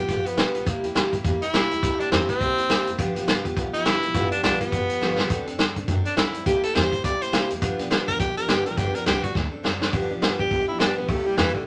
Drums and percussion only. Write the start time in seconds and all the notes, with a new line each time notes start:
0.09 kick, closed hi-hat
0.26 closed hi-hat
0.37 snare, closed hi-hat
0.55 closed hi-hat
0.67 kick, closed hi-hat
0.84 closed hi-hat
0.95 snare, closed hi-hat
1.13 kick, closed hi-hat
1.24 kick, closed hi-hat
1.42 closed hi-hat
1.54 snare, closed hi-hat
1.71 closed hi-hat
1.83 kick, closed hi-hat
2.00 closed hi-hat
2.12 snare, closed hi-hat
2.29 kick, closed hi-hat
2.41 kick, closed hi-hat
2.58 closed hi-hat
2.70 snare, closed hi-hat
2.87 closed hi-hat
2.99 kick, closed hi-hat
3.16 closed hi-hat
3.28 snare, closed hi-hat
3.45 kick, closed hi-hat
3.57 kick, closed hi-hat
3.74 closed hi-hat
3.85 snare, closed hi-hat
4.03 closed hi-hat
4.14 kick, closed hi-hat
4.32 closed hi-hat
4.43 snare, closed hi-hat
4.61 kick, closed hi-hat
4.72 kick, closed hi-hat
4.90 closed hi-hat
5.01 snare
5.18 snare
5.30 kick, closed hi-hat
5.47 closed hi-hat
5.59 snare, closed hi-hat
5.76 kick, closed hi-hat
5.88 kick, closed hi-hat
6.05 closed hi-hat
6.17 snare, closed hi-hat
6.34 closed hi-hat
6.46 kick, closed hi-hat
6.63 closed hi-hat
6.75 snare, closed hi-hat
6.92 kick, closed hi-hat
7.04 kick, closed hi-hat
7.22 closed hi-hat
7.33 snare, closed hi-hat
7.50 closed hi-hat
7.62 kick, closed hi-hat
7.79 closed hi-hat
7.91 snare, closed hi-hat
8.08 kick, closed hi-hat
8.20 kick, closed hi-hat
8.37 closed hi-hat
8.48 snare, closed hi-hat
8.66 closed hi-hat
8.77 kick, closed hi-hat
8.95 closed hi-hat
9.06 snare, closed hi-hat
9.24 kick, closed hi-hat
9.35 kick, snare
9.64 snare
9.81 snare
9.93 kick, open hi-hat
10.22 snare, open hi-hat
10.39 kick
10.51 kick, open hi-hat
10.80 snare, open hi-hat
11.09 kick, open hi-hat
11.37 snare, open hi-hat
11.55 kick